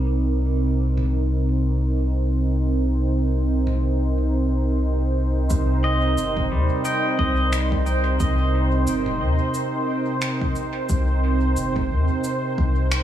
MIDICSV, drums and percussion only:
0, 0, Header, 1, 2, 480
1, 0, Start_track
1, 0, Key_signature, -3, "minor"
1, 0, Tempo, 674157
1, 79, Time_signature, 4, 2, 24, 8
1, 9277, End_track
2, 0, Start_track
2, 0, Title_t, "Drums"
2, 693, Note_on_c, 9, 45, 65
2, 765, Note_off_c, 9, 45, 0
2, 2612, Note_on_c, 9, 45, 65
2, 2684, Note_off_c, 9, 45, 0
2, 3916, Note_on_c, 9, 82, 53
2, 3919, Note_on_c, 9, 36, 119
2, 3987, Note_off_c, 9, 82, 0
2, 3990, Note_off_c, 9, 36, 0
2, 4398, Note_on_c, 9, 82, 55
2, 4469, Note_off_c, 9, 82, 0
2, 4532, Note_on_c, 9, 45, 81
2, 4536, Note_on_c, 9, 36, 60
2, 4603, Note_off_c, 9, 45, 0
2, 4608, Note_off_c, 9, 36, 0
2, 4876, Note_on_c, 9, 82, 52
2, 4948, Note_off_c, 9, 82, 0
2, 5119, Note_on_c, 9, 36, 105
2, 5190, Note_off_c, 9, 36, 0
2, 5359, Note_on_c, 9, 26, 85
2, 5359, Note_on_c, 9, 82, 51
2, 5430, Note_off_c, 9, 26, 0
2, 5430, Note_off_c, 9, 82, 0
2, 5497, Note_on_c, 9, 36, 101
2, 5568, Note_off_c, 9, 36, 0
2, 5599, Note_on_c, 9, 82, 31
2, 5670, Note_off_c, 9, 82, 0
2, 5838, Note_on_c, 9, 82, 57
2, 5839, Note_on_c, 9, 36, 123
2, 5909, Note_off_c, 9, 82, 0
2, 5910, Note_off_c, 9, 36, 0
2, 6317, Note_on_c, 9, 82, 59
2, 6388, Note_off_c, 9, 82, 0
2, 6452, Note_on_c, 9, 45, 76
2, 6523, Note_off_c, 9, 45, 0
2, 6794, Note_on_c, 9, 82, 53
2, 6866, Note_off_c, 9, 82, 0
2, 7275, Note_on_c, 9, 26, 89
2, 7275, Note_on_c, 9, 82, 52
2, 7346, Note_off_c, 9, 26, 0
2, 7346, Note_off_c, 9, 82, 0
2, 7415, Note_on_c, 9, 36, 107
2, 7487, Note_off_c, 9, 36, 0
2, 7515, Note_on_c, 9, 82, 30
2, 7586, Note_off_c, 9, 82, 0
2, 7754, Note_on_c, 9, 82, 54
2, 7758, Note_on_c, 9, 36, 121
2, 7826, Note_off_c, 9, 82, 0
2, 7829, Note_off_c, 9, 36, 0
2, 8235, Note_on_c, 9, 82, 56
2, 8306, Note_off_c, 9, 82, 0
2, 8371, Note_on_c, 9, 45, 75
2, 8376, Note_on_c, 9, 36, 66
2, 8442, Note_off_c, 9, 45, 0
2, 8447, Note_off_c, 9, 36, 0
2, 8715, Note_on_c, 9, 82, 53
2, 8786, Note_off_c, 9, 82, 0
2, 8958, Note_on_c, 9, 36, 112
2, 9029, Note_off_c, 9, 36, 0
2, 9196, Note_on_c, 9, 26, 91
2, 9196, Note_on_c, 9, 82, 51
2, 9267, Note_off_c, 9, 26, 0
2, 9267, Note_off_c, 9, 82, 0
2, 9277, End_track
0, 0, End_of_file